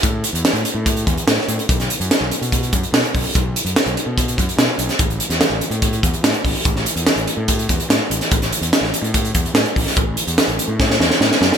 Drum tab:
HH |x-xxxxx-xxxxx-xx|xxxxx-xxxxxxxxo-|x-xxxxx-xxxxx-xx|xxxxx-xxxxxxxxo-|
SD |----o-------oo--|-o--o-------o---|----o-------o--o|---oo-------o---|
BD |o-------o-o-----|o-------o-o---o-|o-------o-o-----|o-------o-o---o-|

HH |x-xxxxx-xxxxx-xx|xxxxx-xxxxxxxxo-|x-xxxxx---------|
SD |-o--o-------o--o|-o--oo------o--o|----o---oooooooo|
BD |o-------o-o-----|o-------o-o---o-|o-------o-------|